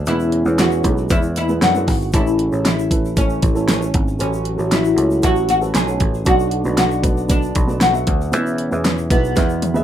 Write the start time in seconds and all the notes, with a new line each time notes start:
0.06 E2 B2 C#3 G#3 B3 C#4 E4 G#4 B4, closed hi-hat, shaker
0.20 shaker
0.32 closed hi-hat
0.45 E2 G#3 B3 E4 G#4 C#5, shaker
0.59 F#4, snare, closed hi-hat, shaker
0.71 shaker
0.84 B1 G#3 B3 E4 G#4 B4, kick, closed hi-hat, shaker
0.98 shaker
1.09 E2 G#3 B3 E4 G#4 B4, kick, closed hi-hat, shaker
1.22 shaker
1.36 E4, closed hi-hat, shaker
1.48 G#3 B3 E4 G#4 B4, shaker
1.62 F#2 D3 D4 F#4, snare, closed hi-hat, shaker
1.74 G#3 B3 E4 G#4 B4, shaker
1.88 G#1, kick, snare, open hi-hat
2.01 shaker
2.13 A1 A2 C#3 E3 A3 C#4 E4 A4 C#5, kick, closed hi-hat, shaker
2.27 shaker
2.39 closed hi-hat
2.52 A1 A3 C#4 E4 A4 C#5, shaker
2.65 E4, snare, closed hi-hat, shaker
2.79 shaker
2.91 A3 C#4 E4 A4 B4, kick, closed hi-hat, shaker
3.05 shaker
3.16 E3 A3 C#4 E4 A4 C#5, kick, closed hi-hat, shaker
3.30 shaker
3.42 A1, kick, closed hi-hat, shaker
3.55 A3 C#4 E4 A4 C#5, shaker
3.68 C#4, snare, closed hi-hat, shaker
3.80 A3 C#4 E4 A4 C#5, shaker
3.94 G#1, kick, closed hi-hat
4.08 shaker
4.19 A1 A2 F#3 A3 C#4 F#4 A4 C#5, closed hi-hat, shaker
4.33 shaker
4.45 closed hi-hat
4.58 A1 A3 C#4 F#4 A4 C#5, shaker
4.71 E4, snare, closed hi-hat, shaker
4.85 shaker
4.96 C#2 A3 C#4 F#4 A4 C#5, closed hi-hat, shaker
5.11 shaker
5.22 A1 A3 C#4 F#4 A4 E5, kick, closed hi-hat, shaker
5.36 shaker
5.49 F#4, closed hi-hat, shaker
5.61 A3 C#4 F#4 A4 B4, shaker
5.75 B1 G#4, snare, closed hi-hat, shaker
5.87 A3 C#4 F#4 C#5, shaker
6.00 A1, kick, closed hi-hat
6.14 shaker
6.25 B1 B2 D3 F#3 B3 D4 F#4 B4 D5, kick, closed hi-hat, shaker
6.39 shaker
6.51 closed hi-hat
6.64 B1 B3 D4 F#4 B4 D5, shaker
6.77 F#4, snare, closed hi-hat, shaker
6.91 shaker
7.03 B3 D4 F#4 B4 D5, kick, closed hi-hat, shaker
7.17 shaker
7.29 B3 D4 F#4 B4 D5, kick, closed hi-hat, shaker
7.43 shaker
7.55 B1, kick, closed hi-hat, shaker
7.67 B3 D4 F#4 B4 D5, shaker
7.81 F#4, snare, closed hi-hat, shaker
7.93 B3 D4 F#4 B4 E5, shaker
8.07 D2, kick, closed hi-hat
8.21 shaker
8.32 E2 B2 C#3 B3 C#4 E4 G#4 B4 E5, closed hi-hat, shaker
8.47 shaker
8.58 closed hi-hat
8.71 E2 B3 E4 G#4 B4 E5, shaker
8.85 snare, closed hi-hat, shaker
8.98 shaker
9.10 B1 B3 E4 G#4 B4 E5, kick, closed hi-hat, shaker
9.24 shaker
9.36 E2 B2 B3 E4 G#4 B4 E5, kick, snare, closed hi-hat, shaker
9.50 shaker
9.62 closed hi-hat, high tom, shaker
9.74 B3 E4 G#4 B4 E5, shaker